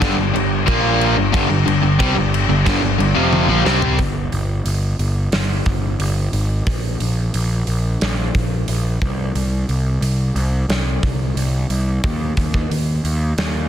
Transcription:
Already playing: G3 D4 G4
0.00 G1 G2 D3, kick, snare, crash
0.17 G1 G2 D3
0.34 G1 G2 D3, crash
0.66 A#1 A#2 F3 A#3, kick, crash
1.01 crash
1.17 G1 G2 D3
1.32 G1 G2 D3, kick, crash
1.49 G1 G2 D3
1.66 G1 G2 D3, crash
1.83 G1 G2 D3
1.99 C2 C3 G3, kick, crash
2.16 G1 G2 D3
2.34 crash
2.49 G1 G2 D3
2.66 G1 G2 D3, kick, snare, crash
2.82 G1 G2 D3
2.98 G1 G2 D3, crash
3.15 F1 F2 C3 F3
3.33 high tom
3.48 A#1 A#2 F3
3.65 C2 C3 G3 C4, snare
3.82 floor tom
3.99 G1, kick, open hi-hat
4.32 G1, open hi-hat
4.65 G1, open hi-hat
4.99 G1, open hi-hat
5.32 G1, snare, open hi-hat
5.66 G1, kick, open hi-hat
5.99 G1, open hi-hat
6.33 G#1, open hi-hat
6.67 A#1, kick, open hi-hat
7.00 A#1, open hi-hat
7.34 A#1, open hi-hat
7.67 A#1, open hi-hat
8.01 A#1, snare, open hi-hat
8.35 A#1, kick, open hi-hat
8.68 A#1, open hi-hat
9.01 C2, kick, open hi-hat
9.35 C2, open hi-hat
9.68 C2, open hi-hat
10.01 C2, open hi-hat
10.35 C2, open hi-hat
10.69 C2, snare, open hi-hat
11.03 C2, kick, open hi-hat
11.35 C2, open hi-hat
11.70 C2, open hi-hat
12.04 D#2, kick, open hi-hat
12.37 D#2, kick, open hi-hat
12.54 kick
12.70 D#2, open hi-hat
13.04 D#2, open hi-hat
13.38 snare, open hi-hat

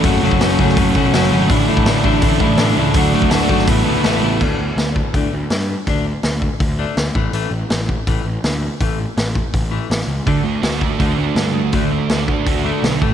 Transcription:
Already playing: A5
0.03 F#1 F#2 C#3 F#3 A3 C#4 F#4 A4 C#5, kick, open hi-hat
0.22 F#1 F#2 C#3 F#3 A3 C#4 F#4
0.31 kick
0.40 F#1 F#2 C#3 F#3 A3 C#4 F#4, snare, open hi-hat
0.59 F#1 F#2 C#3 F#3 A3 C#4 F#4, kick
0.69 snare
0.76 F#1 F#2 C#3 F#3 A3 C#4 F#4, kick, open hi-hat
0.95 B1 F#2 C#3 F#3 A3 C#4 F#4, kick
1.13 F#1 F#2 C#3 F#3 A3 C#4 F#4, snare, open hi-hat
1.22 snare
1.30 G#1 F#2 C#3 F#3 A3 C#4 F#4
1.49 A1 A2 D3 E3 A3 D4 E4 A4 D5 A5, kick, open hi-hat
1.67 A2 D3 E3 A3 D4 E4
1.77 kick
1.85 A1 A2 D3 E3 A3 D4 E4, snare, open hi-hat
2.03 A1 A2 D3 E3 A3 D4 E4, kick
2.22 A1 A2 D3 E3 A3 D4 E4, kick, open hi-hat
2.40 A1 A2 D3 E3 A3 D4 E4, kick
2.57 A1 A2 D3 E3 A3 D4 E4, snare, open hi-hat
2.76 C#2 A2 D3 E3 A3 D4 E4
2.94 D2 D3 F#3 A3 D4 F#4 D5, kick, open hi-hat
3.13 D2 D3 F#3 A3 D4 F#4
3.22 kick
3.31 D2 D3 F#3 A3 D4 F#4, snare, open hi-hat
3.49 G#1 D3 F#3 A3 D4 F#4, kick
3.59 snare
3.67 A1 A2 E3 A3 B3 E4 A4 B4 A5, kick, open hi-hat
3.86 D2 A2 E3 A3 B3 E4 A4
4.04 A1 A2 E3 A3 B3 E4 A4, snare, open hi-hat
4.22 A1 A2 E3 A3 B3 E4 A4
4.41 D2 D3 A3 D4, kick, crash
4.59 D2 D3 A3
4.76 D2 D3 A3, snare, open hi-hat
4.96 D3 A3, kick
5.14 D2 D3 A3 D4, kick, open hi-hat
5.32 D2 D3 A3
5.50 G2 D3 A3, snare, open hi-hat
5.59 snare
5.70 D3 A3
5.87 D2 D3 A3 D4, kick, open hi-hat
6.07 D3 A3
6.23 D2 D3 A3, snare, open hi-hat
6.42 D3 A3, kick
6.59 D2 D3 A3, kick, open hi-hat
6.79 D3 A3 D4
6.97 D2 D3 A3, snare, open hi-hat
7.15 A1 A2 E3 A3, kick
7.33 A1 A2 E3 A3, open hi-hat
7.51 A1 A2 E3
7.70 A1 A2 E3, snare, open hi-hat
7.89 A2 E3, kick
8.07 A1 A2 E3 A3, kick, open hi-hat
8.25 A1 A2 E3
8.44 D2 A2 E3, snare, open hi-hat
8.62 A2 E3
8.81 A1 A2 E3 A3, kick, open hi-hat
8.99 A2 E3
9.17 A1 A2 E3, snare, open hi-hat
9.35 A2 E3, kick
9.54 A1 A2 E3, kick, open hi-hat
9.71 A2 E3 A3
9.90 A1 A2 E3, snare, open hi-hat
10.01 snare
10.07 C#2 A2 E3
10.26 D2 D3 A3 D4 F#4 A4 D5 A5, kick, open hi-hat
10.44 D2 D3 A3
10.62 D2 D3 A3 F#4, snare, open hi-hat
10.80 D3 A3 D4, kick
10.99 D2 D3 A3 D4 F#4, kick, open hi-hat
11.18 D2 D3 A3 D4
11.35 G2 D3 A3, snare, open hi-hat
11.55 D3 A3
11.72 D2 D3 A3 D4, kick, open hi-hat
11.92 D3 A3
12.09 D2 D3 A3 F#4, snare, open hi-hat
12.27 D3 A3 D4, kick
12.46 D2 D3 A3 F#4, kick, open hi-hat
12.65 D3 A3 D4
12.82 B1 D3 A3, snare, open hi-hat
13.01 A1 A2 E3 A3 E4 A4 C#5, kick

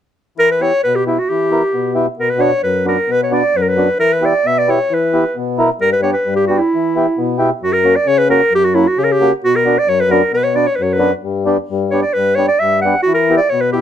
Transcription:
0.38 E3 A#4
0.52 B4
0.60 B3 E4 G4 C#5
0.84 B2 B4
0.96 G4
1.07 B3 E4 G4
1.19 F#4
1.29 E3 G4
1.51 B3 E4 A#4
1.73 B2
1.95 B3 E4 G4
2.19 B2 A#4
2.30 B4
2.38 B3 D4 F#4 C#5
2.63 F#2 B4
2.85 B3 D4 F#4 A#4
3.08 B2 B4
3.23 C#5
3.31 B3 D4 F#4 D5
3.55 F#2 B4
3.62 A#4
3.69 B4
3.76 B3 D4 F#4
3.99 E3 A#4
4.13 B4
4.21 B3 E4 G4
4.25 D5
4.45 B2 E5
4.59 D5
4.67 B3 E4 G4 C#5
4.90 E3
4.94 B4
5.13 B3 E4 G4
5.36 B2
5.58 B3 E4 A#4
5.80 G2 A#4
5.92 B4
6.02 B3 D4 G4 C#5
6.13 B4
6.26 G2
6.36 G4
6.47 B3 D4 F#4 G4
6.58 E4
6.74 E3
6.96 B3 E4 G4
7.18 B2
7.38 B3 E4 G4
7.62 F#2 F#4
7.73 A#4
7.84 A#3 C#4 F#4
7.96 D5
8.06 C#3 C#5
8.19 B4
8.29 A#3 C#4 F#4 A#4
8.51 F#2
8.55 G4
8.65 F#4
8.75 A#3 C#4 E4 F#4
8.88 F#4
8.97 C#3 G4
9.04 A#4
9.12 G4
9.21 A#3 C#4 F#4
9.44 B2 F#4
9.56 A#4
9.65 B3 D4 F#4
9.78 D5
9.88 F#2 C#5
10.01 B4
10.10 B3 D4 F#4 A#4
10.32 B2 B4
10.44 C#5
10.54 B3 D4 F#4 D5
10.66 C#5
10.76 F#2 B4
10.83 C#5
10.93 B4
10.99 B3 D4 F#4
11.23 G2
11.46 B3 D4 G4
11.70 G2
11.91 B3 D4 G4 C#5
12.03 D5
12.14 G2 B4
12.36 B3 D4 G4 C#5
12.48 D5
12.59 G2 E5
12.82 B3 D4 F#5
12.86 G4
13.03 E3 F#4
13.14 A#4
13.29 B3 E4 G4
13.37 D5
13.49 B2 C#5
13.61 B4
13.73 B3 E4 G4

